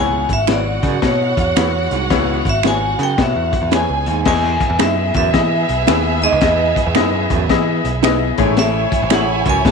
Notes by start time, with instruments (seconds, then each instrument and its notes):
Already playing: picked electric bass C#2, baritone saxophone E2, upright piano B3 E4 C#5, violin section F#4 F#5, vibraphone G#5
0.29 picked electric bass G#1, vibraphone E5, kick, closed hi-hat
0.47 picked electric bass G#1, upright piano B3 E4 C#5, clean electric guitar E4 G#4 B4, finger snap, snare, closed hi-hat
0.52 vibraphone D5
0.83 baritone saxophone F#2, picked electric bass C#3, kick, closed hi-hat
1.02 picked electric bass B2, upright piano B3 E4 C#5, vibraphone C#5, kick, snare, closed hi-hat
1.37 picked electric bass E2, vibraphone C#5, kick, closed hi-hat
1.56 picked electric bass E2, upright piano B3 E4 C#5, clean electric guitar E4 G#4 B4, finger snap, snare, closed hi-hat
1.91 picked electric bass C2, baritone saxophone G#2, closed hi-hat
2.10 picked electric bass C#2, baritone saxophone E2, upright piano B3 E4 C#5, kick, snare, closed hi-hat
2.45 picked electric bass G#1, kick, closed hi-hat
2.49 vibraphone E5
2.63 picked electric bass G#1, upright piano B3 E4 C#5, clean electric guitar E4 G#4 B4, finger snap, snare, closed hi-hat
2.67 vibraphone G#5
2.99 baritone saxophone F#2, picked electric bass C#3, closed hi-hat
3.03 vibraphone G5
3.18 picked electric bass B2, upright piano B3 E4 C#5, kick, snare, closed hi-hat
3.22 vibraphone E5
3.36 picked electric bass E2
3.53 kick, closed hi-hat
3.62 picked electric bass E2
3.71 upright piano B3 E4 C#5, clean electric guitar E4 G#4 B4, violin section G#4 G#5, vibraphone G#5, finger snap, snare, closed hi-hat
3.89 picked electric bass C#2
4.06 picked electric bass D#2, baritone saxophone G#2, closed hi-hat
4.25 picked electric bass E2, baritone saxophone E2, violin section B3 G#4 E5, upright piano B3 E4 G#4 D#5, vibraphone G#5, kick, snare, crash
4.44 snare
4.61 kick, closed hi-hat
4.70 picked electric bass E2
4.79 picked electric bass F#2, upright piano B3 E4 G#4 D#5, clean electric guitar D#4 G#4 B4, vibraphone E5, finger snap, snare, closed hi-hat
5.14 picked electric bass E2, baritone saxophone F#2, vibraphone E5, kick, closed hi-hat
5.33 picked electric bass E3, upright piano B3 E4 G#4 D#5, kick, snare, closed hi-hat
5.69 picked electric bass B1, closed hi-hat
5.87 picked electric bass D#2, upright piano B3 E4 G#4 E5, clean electric guitar D#4 G#4 B4, finger snap, snare, closed hi-hat
6.22 baritone saxophone G#2, vibraphone D#5, closed hi-hat
6.32 picked electric bass C#2
6.41 picked electric bass E2, baritone saxophone E2, upright piano B3 E4 G#4 D#5, kick, snare, closed hi-hat
6.76 kick, closed hi-hat
6.86 picked electric bass E2
6.95 picked electric bass F#2, upright piano B3 E4 G#4 D#5, clean electric guitar D#4 G#4 B4, finger snap, snare, closed hi-hat
7.30 picked electric bass E2, baritone saxophone F#2, kick, closed hi-hat
7.50 picked electric bass E3, upright piano B3 E4 G#4 D#5, kick, snare, closed hi-hat
7.84 picked electric bass B1, closed hi-hat
8.03 upright piano B3 E4 G#4 D#5, clean electric guitar D#4 G#4 B4, finger snap, snare, closed hi-hat
8.38 picked electric bass A1, baritone saxophone G#2, upright piano A3 E4 G#4 C#5, violin section E4 C#5 G#5, kick, closed hi-hat
8.57 baritone saxophone A2, vibraphone E5, snare, closed hi-hat
8.92 kick, closed hi-hat
9.02 picked electric bass A1
9.10 picked electric bass A1, upright piano A3 E4 G#4 C#5, clean electric guitar E4 G#4 C#5, vibraphone F#5, finger snap, snare, closed hi-hat
9.45 picked electric bass C#2, baritone saxophone F#2, kick, closed hi-hat
9.50 vibraphone G#5
9.65 picked electric bass A2, upright piano A3 E4 G#4 B4, vibraphone A5, kick, snare, closed hi-hat